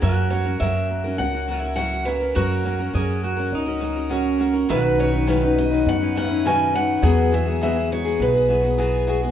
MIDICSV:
0, 0, Header, 1, 6, 480
1, 0, Start_track
1, 0, Tempo, 583090
1, 26, Time_signature, 4, 2, 24, 8
1, 7665, End_track
2, 0, Start_track
2, 0, Title_t, "Steel-string acoustic guitar"
2, 0, Program_c, 0, 25
2, 14, Note_on_c, 0, 70, 79
2, 246, Note_off_c, 0, 70, 0
2, 249, Note_on_c, 0, 73, 76
2, 492, Note_on_c, 0, 76, 90
2, 505, Note_off_c, 0, 73, 0
2, 947, Note_off_c, 0, 76, 0
2, 973, Note_on_c, 0, 78, 94
2, 1437, Note_off_c, 0, 78, 0
2, 1446, Note_on_c, 0, 78, 87
2, 1688, Note_on_c, 0, 71, 78
2, 1705, Note_off_c, 0, 78, 0
2, 1931, Note_off_c, 0, 71, 0
2, 1935, Note_on_c, 0, 70, 73
2, 3589, Note_off_c, 0, 70, 0
2, 3870, Note_on_c, 0, 71, 84
2, 4093, Note_off_c, 0, 71, 0
2, 4114, Note_on_c, 0, 73, 78
2, 4359, Note_off_c, 0, 73, 0
2, 4362, Note_on_c, 0, 71, 83
2, 4596, Note_on_c, 0, 75, 88
2, 4602, Note_off_c, 0, 71, 0
2, 4816, Note_off_c, 0, 75, 0
2, 4845, Note_on_c, 0, 78, 90
2, 5072, Note_off_c, 0, 78, 0
2, 5082, Note_on_c, 0, 78, 88
2, 5320, Note_off_c, 0, 78, 0
2, 5323, Note_on_c, 0, 80, 95
2, 5556, Note_off_c, 0, 80, 0
2, 5559, Note_on_c, 0, 78, 95
2, 6038, Note_off_c, 0, 78, 0
2, 6042, Note_on_c, 0, 76, 90
2, 6269, Note_off_c, 0, 76, 0
2, 6279, Note_on_c, 0, 76, 96
2, 6498, Note_off_c, 0, 76, 0
2, 6521, Note_on_c, 0, 73, 83
2, 6762, Note_off_c, 0, 73, 0
2, 6766, Note_on_c, 0, 71, 81
2, 7445, Note_off_c, 0, 71, 0
2, 7665, End_track
3, 0, Start_track
3, 0, Title_t, "Pedal steel guitar"
3, 0, Program_c, 1, 26
3, 29, Note_on_c, 1, 66, 83
3, 1305, Note_off_c, 1, 66, 0
3, 1305, Note_on_c, 1, 64, 83
3, 1933, Note_off_c, 1, 64, 0
3, 1943, Note_on_c, 1, 66, 82
3, 2423, Note_off_c, 1, 66, 0
3, 2426, Note_on_c, 1, 68, 74
3, 2666, Note_off_c, 1, 68, 0
3, 2669, Note_on_c, 1, 66, 80
3, 2916, Note_off_c, 1, 66, 0
3, 2922, Note_on_c, 1, 63, 81
3, 3394, Note_on_c, 1, 61, 60
3, 3410, Note_off_c, 1, 63, 0
3, 3839, Note_off_c, 1, 61, 0
3, 3870, Note_on_c, 1, 66, 84
3, 5146, Note_off_c, 1, 66, 0
3, 5146, Note_on_c, 1, 64, 84
3, 5790, Note_on_c, 1, 68, 96
3, 5847, Note_off_c, 1, 64, 0
3, 7665, Note_off_c, 1, 68, 0
3, 7665, End_track
4, 0, Start_track
4, 0, Title_t, "Steel-string acoustic guitar"
4, 0, Program_c, 2, 25
4, 11, Note_on_c, 2, 54, 70
4, 17, Note_on_c, 2, 61, 73
4, 20, Note_on_c, 2, 66, 77
4, 27, Note_on_c, 2, 70, 67
4, 242, Note_off_c, 2, 54, 0
4, 249, Note_off_c, 2, 61, 0
4, 252, Note_on_c, 2, 54, 54
4, 253, Note_off_c, 2, 66, 0
4, 259, Note_on_c, 2, 61, 50
4, 262, Note_off_c, 2, 70, 0
4, 263, Note_on_c, 2, 66, 59
4, 272, Note_on_c, 2, 70, 56
4, 360, Note_off_c, 2, 70, 0
4, 370, Note_off_c, 2, 66, 0
4, 370, Note_on_c, 2, 70, 47
4, 379, Note_off_c, 2, 54, 0
4, 380, Note_on_c, 2, 66, 43
4, 383, Note_off_c, 2, 61, 0
4, 394, Note_on_c, 2, 61, 42
4, 493, Note_off_c, 2, 61, 0
4, 497, Note_on_c, 2, 54, 69
4, 498, Note_off_c, 2, 70, 0
4, 501, Note_off_c, 2, 66, 0
4, 503, Note_on_c, 2, 61, 70
4, 511, Note_on_c, 2, 66, 73
4, 512, Note_on_c, 2, 70, 77
4, 847, Note_off_c, 2, 70, 0
4, 857, Note_on_c, 2, 70, 45
4, 860, Note_off_c, 2, 66, 0
4, 862, Note_off_c, 2, 54, 0
4, 865, Note_off_c, 2, 61, 0
4, 869, Note_on_c, 2, 66, 43
4, 881, Note_on_c, 2, 61, 41
4, 1084, Note_off_c, 2, 70, 0
4, 1094, Note_on_c, 2, 70, 49
4, 1097, Note_off_c, 2, 66, 0
4, 1107, Note_off_c, 2, 61, 0
4, 1107, Note_on_c, 2, 66, 46
4, 1117, Note_on_c, 2, 61, 44
4, 1214, Note_off_c, 2, 61, 0
4, 1215, Note_on_c, 2, 54, 54
4, 1221, Note_off_c, 2, 66, 0
4, 1221, Note_off_c, 2, 70, 0
4, 1224, Note_on_c, 2, 61, 50
4, 1231, Note_on_c, 2, 66, 60
4, 1235, Note_on_c, 2, 70, 63
4, 1325, Note_off_c, 2, 70, 0
4, 1335, Note_on_c, 2, 70, 45
4, 1338, Note_off_c, 2, 66, 0
4, 1341, Note_off_c, 2, 54, 0
4, 1346, Note_off_c, 2, 61, 0
4, 1348, Note_on_c, 2, 66, 43
4, 1355, Note_on_c, 2, 61, 36
4, 1451, Note_off_c, 2, 61, 0
4, 1454, Note_off_c, 2, 66, 0
4, 1454, Note_on_c, 2, 54, 64
4, 1461, Note_off_c, 2, 70, 0
4, 1461, Note_on_c, 2, 61, 67
4, 1464, Note_on_c, 2, 66, 63
4, 1472, Note_on_c, 2, 70, 68
4, 1686, Note_off_c, 2, 54, 0
4, 1691, Note_off_c, 2, 61, 0
4, 1696, Note_on_c, 2, 54, 49
4, 1700, Note_off_c, 2, 66, 0
4, 1701, Note_on_c, 2, 61, 55
4, 1706, Note_off_c, 2, 70, 0
4, 1710, Note_on_c, 2, 66, 60
4, 1716, Note_on_c, 2, 70, 65
4, 1804, Note_off_c, 2, 70, 0
4, 1814, Note_on_c, 2, 70, 41
4, 1816, Note_off_c, 2, 66, 0
4, 1822, Note_off_c, 2, 54, 0
4, 1824, Note_off_c, 2, 61, 0
4, 1826, Note_on_c, 2, 66, 37
4, 1836, Note_on_c, 2, 61, 33
4, 1932, Note_off_c, 2, 61, 0
4, 1934, Note_on_c, 2, 54, 74
4, 1937, Note_off_c, 2, 66, 0
4, 1941, Note_off_c, 2, 70, 0
4, 1942, Note_on_c, 2, 61, 76
4, 1947, Note_on_c, 2, 66, 76
4, 1950, Note_on_c, 2, 70, 76
4, 2162, Note_off_c, 2, 54, 0
4, 2171, Note_off_c, 2, 61, 0
4, 2172, Note_on_c, 2, 54, 57
4, 2178, Note_off_c, 2, 66, 0
4, 2181, Note_on_c, 2, 61, 58
4, 2188, Note_on_c, 2, 66, 65
4, 2189, Note_off_c, 2, 70, 0
4, 2198, Note_on_c, 2, 70, 63
4, 2289, Note_off_c, 2, 70, 0
4, 2299, Note_off_c, 2, 66, 0
4, 2299, Note_on_c, 2, 70, 50
4, 2300, Note_off_c, 2, 54, 0
4, 2305, Note_off_c, 2, 61, 0
4, 2309, Note_on_c, 2, 66, 47
4, 2320, Note_on_c, 2, 61, 39
4, 2414, Note_off_c, 2, 61, 0
4, 2416, Note_on_c, 2, 54, 73
4, 2419, Note_off_c, 2, 66, 0
4, 2424, Note_off_c, 2, 70, 0
4, 2424, Note_on_c, 2, 61, 72
4, 2429, Note_on_c, 2, 66, 75
4, 2433, Note_on_c, 2, 70, 80
4, 2763, Note_off_c, 2, 70, 0
4, 2773, Note_on_c, 2, 70, 54
4, 2778, Note_off_c, 2, 66, 0
4, 2782, Note_off_c, 2, 54, 0
4, 2786, Note_off_c, 2, 61, 0
4, 2788, Note_on_c, 2, 66, 51
4, 2796, Note_on_c, 2, 61, 47
4, 3002, Note_off_c, 2, 70, 0
4, 3012, Note_on_c, 2, 70, 55
4, 3016, Note_off_c, 2, 66, 0
4, 3024, Note_off_c, 2, 61, 0
4, 3026, Note_on_c, 2, 66, 52
4, 3034, Note_on_c, 2, 61, 46
4, 3128, Note_off_c, 2, 61, 0
4, 3131, Note_on_c, 2, 54, 65
4, 3137, Note_off_c, 2, 66, 0
4, 3138, Note_on_c, 2, 61, 59
4, 3140, Note_off_c, 2, 70, 0
4, 3147, Note_on_c, 2, 66, 66
4, 3153, Note_on_c, 2, 70, 66
4, 3248, Note_off_c, 2, 70, 0
4, 3258, Note_on_c, 2, 70, 58
4, 3260, Note_off_c, 2, 54, 0
4, 3262, Note_off_c, 2, 66, 0
4, 3263, Note_off_c, 2, 61, 0
4, 3272, Note_on_c, 2, 66, 46
4, 3280, Note_on_c, 2, 61, 42
4, 3369, Note_off_c, 2, 61, 0
4, 3370, Note_off_c, 2, 66, 0
4, 3371, Note_on_c, 2, 54, 73
4, 3377, Note_off_c, 2, 70, 0
4, 3379, Note_on_c, 2, 61, 72
4, 3380, Note_on_c, 2, 66, 76
4, 3387, Note_on_c, 2, 70, 83
4, 3597, Note_off_c, 2, 54, 0
4, 3606, Note_on_c, 2, 54, 61
4, 3609, Note_off_c, 2, 61, 0
4, 3617, Note_off_c, 2, 66, 0
4, 3619, Note_off_c, 2, 70, 0
4, 3619, Note_on_c, 2, 61, 62
4, 3627, Note_on_c, 2, 66, 71
4, 3629, Note_on_c, 2, 70, 63
4, 3723, Note_off_c, 2, 70, 0
4, 3733, Note_on_c, 2, 70, 51
4, 3736, Note_off_c, 2, 66, 0
4, 3738, Note_off_c, 2, 54, 0
4, 3744, Note_off_c, 2, 61, 0
4, 3745, Note_on_c, 2, 66, 45
4, 3755, Note_on_c, 2, 61, 37
4, 3856, Note_off_c, 2, 61, 0
4, 3857, Note_on_c, 2, 47, 65
4, 3860, Note_on_c, 2, 51, 71
4, 3861, Note_off_c, 2, 70, 0
4, 3863, Note_on_c, 2, 54, 77
4, 3864, Note_off_c, 2, 66, 0
4, 3866, Note_on_c, 2, 61, 69
4, 3867, Note_on_c, 2, 63, 83
4, 3871, Note_on_c, 2, 71, 83
4, 4085, Note_off_c, 2, 54, 0
4, 4093, Note_off_c, 2, 61, 0
4, 4095, Note_on_c, 2, 54, 50
4, 4099, Note_off_c, 2, 63, 0
4, 4103, Note_off_c, 2, 47, 0
4, 4103, Note_on_c, 2, 61, 58
4, 4105, Note_off_c, 2, 51, 0
4, 4108, Note_off_c, 2, 71, 0
4, 4108, Note_on_c, 2, 63, 63
4, 4118, Note_on_c, 2, 71, 56
4, 4207, Note_off_c, 2, 71, 0
4, 4216, Note_off_c, 2, 63, 0
4, 4217, Note_on_c, 2, 71, 51
4, 4222, Note_off_c, 2, 54, 0
4, 4223, Note_off_c, 2, 61, 0
4, 4226, Note_on_c, 2, 63, 48
4, 4232, Note_on_c, 2, 61, 42
4, 4240, Note_on_c, 2, 54, 43
4, 4333, Note_off_c, 2, 54, 0
4, 4334, Note_off_c, 2, 61, 0
4, 4336, Note_on_c, 2, 47, 73
4, 4338, Note_off_c, 2, 71, 0
4, 4338, Note_on_c, 2, 51, 81
4, 4339, Note_off_c, 2, 63, 0
4, 4342, Note_on_c, 2, 54, 79
4, 4344, Note_on_c, 2, 61, 82
4, 4348, Note_on_c, 2, 63, 86
4, 4348, Note_on_c, 2, 71, 79
4, 4449, Note_off_c, 2, 71, 0
4, 4459, Note_on_c, 2, 71, 49
4, 4460, Note_off_c, 2, 63, 0
4, 4463, Note_off_c, 2, 47, 0
4, 4464, Note_off_c, 2, 51, 0
4, 4466, Note_off_c, 2, 54, 0
4, 4467, Note_off_c, 2, 61, 0
4, 4470, Note_on_c, 2, 63, 49
4, 4477, Note_on_c, 2, 61, 42
4, 4483, Note_on_c, 2, 54, 42
4, 4691, Note_off_c, 2, 71, 0
4, 4698, Note_off_c, 2, 63, 0
4, 4701, Note_on_c, 2, 71, 54
4, 4704, Note_off_c, 2, 61, 0
4, 4708, Note_on_c, 2, 63, 51
4, 4711, Note_off_c, 2, 54, 0
4, 4714, Note_on_c, 2, 61, 43
4, 4721, Note_on_c, 2, 54, 40
4, 4934, Note_off_c, 2, 71, 0
4, 4942, Note_off_c, 2, 63, 0
4, 4944, Note_on_c, 2, 71, 52
4, 4949, Note_off_c, 2, 61, 0
4, 4952, Note_off_c, 2, 54, 0
4, 4952, Note_on_c, 2, 63, 46
4, 4959, Note_on_c, 2, 61, 43
4, 4962, Note_on_c, 2, 54, 45
4, 5054, Note_off_c, 2, 54, 0
4, 5063, Note_off_c, 2, 61, 0
4, 5064, Note_on_c, 2, 54, 53
4, 5066, Note_off_c, 2, 71, 0
4, 5070, Note_off_c, 2, 63, 0
4, 5073, Note_on_c, 2, 61, 60
4, 5080, Note_on_c, 2, 63, 63
4, 5085, Note_on_c, 2, 71, 59
4, 5171, Note_off_c, 2, 71, 0
4, 5181, Note_on_c, 2, 71, 52
4, 5182, Note_off_c, 2, 63, 0
4, 5186, Note_off_c, 2, 54, 0
4, 5186, Note_off_c, 2, 61, 0
4, 5192, Note_on_c, 2, 63, 43
4, 5195, Note_on_c, 2, 61, 44
4, 5205, Note_on_c, 2, 54, 37
4, 5305, Note_off_c, 2, 54, 0
4, 5305, Note_off_c, 2, 71, 0
4, 5309, Note_off_c, 2, 61, 0
4, 5311, Note_off_c, 2, 63, 0
4, 5311, Note_on_c, 2, 47, 63
4, 5313, Note_on_c, 2, 51, 73
4, 5315, Note_on_c, 2, 54, 78
4, 5318, Note_on_c, 2, 61, 71
4, 5321, Note_on_c, 2, 63, 79
4, 5323, Note_on_c, 2, 71, 68
4, 5538, Note_off_c, 2, 54, 0
4, 5546, Note_off_c, 2, 61, 0
4, 5547, Note_on_c, 2, 54, 54
4, 5550, Note_off_c, 2, 47, 0
4, 5551, Note_off_c, 2, 51, 0
4, 5553, Note_off_c, 2, 63, 0
4, 5555, Note_on_c, 2, 61, 54
4, 5556, Note_off_c, 2, 71, 0
4, 5563, Note_on_c, 2, 63, 66
4, 5572, Note_on_c, 2, 71, 61
4, 5783, Note_off_c, 2, 54, 0
4, 5785, Note_on_c, 2, 52, 77
4, 5792, Note_off_c, 2, 61, 0
4, 5793, Note_on_c, 2, 54, 69
4, 5796, Note_off_c, 2, 63, 0
4, 5796, Note_on_c, 2, 59, 77
4, 5798, Note_off_c, 2, 71, 0
4, 5800, Note_on_c, 2, 66, 78
4, 5801, Note_on_c, 2, 68, 83
4, 6013, Note_off_c, 2, 54, 0
4, 6021, Note_off_c, 2, 59, 0
4, 6023, Note_on_c, 2, 54, 62
4, 6027, Note_off_c, 2, 52, 0
4, 6029, Note_off_c, 2, 66, 0
4, 6031, Note_on_c, 2, 59, 59
4, 6035, Note_off_c, 2, 68, 0
4, 6039, Note_on_c, 2, 66, 60
4, 6047, Note_on_c, 2, 68, 61
4, 6130, Note_off_c, 2, 68, 0
4, 6140, Note_on_c, 2, 68, 52
4, 6144, Note_off_c, 2, 66, 0
4, 6146, Note_off_c, 2, 54, 0
4, 6150, Note_off_c, 2, 59, 0
4, 6154, Note_on_c, 2, 66, 49
4, 6165, Note_on_c, 2, 59, 45
4, 6265, Note_off_c, 2, 68, 0
4, 6266, Note_off_c, 2, 59, 0
4, 6267, Note_on_c, 2, 52, 68
4, 6269, Note_on_c, 2, 54, 72
4, 6271, Note_off_c, 2, 66, 0
4, 6276, Note_on_c, 2, 59, 81
4, 6280, Note_on_c, 2, 66, 83
4, 6282, Note_on_c, 2, 68, 85
4, 6371, Note_off_c, 2, 68, 0
4, 6381, Note_on_c, 2, 68, 52
4, 6387, Note_off_c, 2, 66, 0
4, 6388, Note_off_c, 2, 52, 0
4, 6389, Note_off_c, 2, 54, 0
4, 6392, Note_off_c, 2, 59, 0
4, 6397, Note_on_c, 2, 66, 47
4, 6405, Note_on_c, 2, 59, 44
4, 6614, Note_off_c, 2, 68, 0
4, 6624, Note_on_c, 2, 68, 60
4, 6627, Note_off_c, 2, 66, 0
4, 6637, Note_off_c, 2, 59, 0
4, 6637, Note_on_c, 2, 66, 48
4, 6648, Note_on_c, 2, 59, 44
4, 6855, Note_off_c, 2, 68, 0
4, 6864, Note_on_c, 2, 68, 52
4, 6869, Note_off_c, 2, 66, 0
4, 6878, Note_off_c, 2, 59, 0
4, 6879, Note_on_c, 2, 66, 45
4, 6888, Note_on_c, 2, 59, 45
4, 6984, Note_off_c, 2, 59, 0
4, 6984, Note_on_c, 2, 54, 60
4, 6987, Note_off_c, 2, 68, 0
4, 6988, Note_off_c, 2, 66, 0
4, 6994, Note_on_c, 2, 59, 65
4, 6998, Note_on_c, 2, 66, 59
4, 7006, Note_on_c, 2, 68, 60
4, 7096, Note_off_c, 2, 68, 0
4, 7106, Note_off_c, 2, 54, 0
4, 7106, Note_on_c, 2, 68, 54
4, 7108, Note_off_c, 2, 66, 0
4, 7111, Note_off_c, 2, 59, 0
4, 7117, Note_on_c, 2, 66, 47
4, 7128, Note_on_c, 2, 59, 40
4, 7224, Note_off_c, 2, 59, 0
4, 7227, Note_off_c, 2, 68, 0
4, 7227, Note_on_c, 2, 52, 77
4, 7229, Note_off_c, 2, 66, 0
4, 7232, Note_on_c, 2, 54, 67
4, 7234, Note_on_c, 2, 59, 67
4, 7238, Note_on_c, 2, 66, 70
4, 7241, Note_on_c, 2, 68, 78
4, 7457, Note_off_c, 2, 54, 0
4, 7461, Note_off_c, 2, 59, 0
4, 7467, Note_on_c, 2, 54, 67
4, 7468, Note_off_c, 2, 52, 0
4, 7471, Note_off_c, 2, 66, 0
4, 7471, Note_on_c, 2, 59, 74
4, 7475, Note_off_c, 2, 68, 0
4, 7481, Note_on_c, 2, 66, 72
4, 7486, Note_on_c, 2, 68, 68
4, 7576, Note_off_c, 2, 68, 0
4, 7586, Note_on_c, 2, 68, 52
4, 7588, Note_off_c, 2, 54, 0
4, 7590, Note_off_c, 2, 59, 0
4, 7590, Note_off_c, 2, 66, 0
4, 7600, Note_on_c, 2, 66, 50
4, 7610, Note_on_c, 2, 59, 43
4, 7665, Note_off_c, 2, 59, 0
4, 7665, Note_off_c, 2, 66, 0
4, 7665, Note_off_c, 2, 68, 0
4, 7665, End_track
5, 0, Start_track
5, 0, Title_t, "Upright piano"
5, 0, Program_c, 3, 0
5, 0, Note_on_c, 3, 61, 46
5, 0, Note_on_c, 3, 66, 57
5, 14, Note_on_c, 3, 58, 72
5, 245, Note_off_c, 3, 58, 0
5, 257, Note_on_c, 3, 58, 54
5, 483, Note_off_c, 3, 61, 0
5, 496, Note_on_c, 3, 61, 53
5, 732, Note_off_c, 3, 58, 0
5, 744, Note_on_c, 3, 58, 54
5, 967, Note_off_c, 3, 61, 0
5, 979, Note_on_c, 3, 61, 57
5, 1211, Note_off_c, 3, 58, 0
5, 1223, Note_on_c, 3, 58, 52
5, 1464, Note_on_c, 3, 64, 58
5, 1465, Note_off_c, 3, 66, 0
5, 1577, Note_off_c, 3, 64, 0
5, 1585, Note_on_c, 3, 66, 52
5, 1691, Note_off_c, 3, 58, 0
5, 1703, Note_on_c, 3, 58, 55
5, 1926, Note_off_c, 3, 58, 0
5, 1938, Note_on_c, 3, 58, 71
5, 2171, Note_off_c, 3, 58, 0
5, 2184, Note_on_c, 3, 58, 54
5, 2411, Note_off_c, 3, 61, 0
5, 2424, Note_on_c, 3, 61, 54
5, 2651, Note_off_c, 3, 58, 0
5, 2664, Note_on_c, 3, 58, 54
5, 2890, Note_off_c, 3, 61, 0
5, 2902, Note_on_c, 3, 61, 56
5, 3131, Note_off_c, 3, 58, 0
5, 3143, Note_on_c, 3, 58, 54
5, 3376, Note_off_c, 3, 66, 0
5, 3389, Note_on_c, 3, 66, 63
5, 3615, Note_off_c, 3, 58, 0
5, 3628, Note_on_c, 3, 58, 56
5, 3866, Note_on_c, 3, 51, 74
5, 3914, Note_off_c, 3, 61, 0
5, 3916, Note_off_c, 3, 58, 0
5, 3917, Note_off_c, 3, 66, 0
5, 4102, Note_on_c, 3, 61, 58
5, 4341, Note_on_c, 3, 64, 64
5, 4457, Note_off_c, 3, 64, 0
5, 4459, Note_on_c, 3, 66, 56
5, 4563, Note_off_c, 3, 61, 0
5, 4575, Note_on_c, 3, 61, 57
5, 4822, Note_on_c, 3, 59, 57
5, 5056, Note_off_c, 3, 61, 0
5, 5068, Note_on_c, 3, 61, 59
5, 5293, Note_off_c, 3, 66, 0
5, 5305, Note_on_c, 3, 66, 64
5, 5533, Note_off_c, 3, 61, 0
5, 5545, Note_on_c, 3, 61, 56
5, 5783, Note_on_c, 3, 54, 75
5, 5788, Note_off_c, 3, 51, 0
5, 5833, Note_off_c, 3, 59, 0
5, 5835, Note_off_c, 3, 61, 0
5, 5835, Note_off_c, 3, 66, 0
5, 6023, Note_on_c, 3, 64, 59
5, 6265, Note_on_c, 3, 68, 63
5, 6491, Note_off_c, 3, 64, 0
5, 6504, Note_on_c, 3, 64, 58
5, 6750, Note_on_c, 3, 59, 59
5, 6972, Note_off_c, 3, 64, 0
5, 6985, Note_on_c, 3, 64, 58
5, 7214, Note_off_c, 3, 68, 0
5, 7226, Note_on_c, 3, 68, 66
5, 7454, Note_off_c, 3, 64, 0
5, 7466, Note_on_c, 3, 64, 62
5, 7665, Note_off_c, 3, 54, 0
5, 7665, Note_off_c, 3, 59, 0
5, 7665, Note_off_c, 3, 64, 0
5, 7665, Note_off_c, 3, 68, 0
5, 7665, End_track
6, 0, Start_track
6, 0, Title_t, "Upright bass"
6, 0, Program_c, 4, 32
6, 22, Note_on_c, 4, 42, 96
6, 480, Note_off_c, 4, 42, 0
6, 504, Note_on_c, 4, 42, 82
6, 961, Note_off_c, 4, 42, 0
6, 980, Note_on_c, 4, 37, 86
6, 1911, Note_off_c, 4, 37, 0
6, 1946, Note_on_c, 4, 42, 88
6, 2403, Note_off_c, 4, 42, 0
6, 2425, Note_on_c, 4, 42, 85
6, 2883, Note_off_c, 4, 42, 0
6, 2900, Note_on_c, 4, 37, 83
6, 3832, Note_off_c, 4, 37, 0
6, 3871, Note_on_c, 4, 35, 98
6, 4797, Note_off_c, 4, 35, 0
6, 4825, Note_on_c, 4, 42, 89
6, 5754, Note_off_c, 4, 42, 0
6, 5786, Note_on_c, 4, 40, 103
6, 6715, Note_off_c, 4, 40, 0
6, 6746, Note_on_c, 4, 35, 92
6, 7665, Note_off_c, 4, 35, 0
6, 7665, End_track
0, 0, End_of_file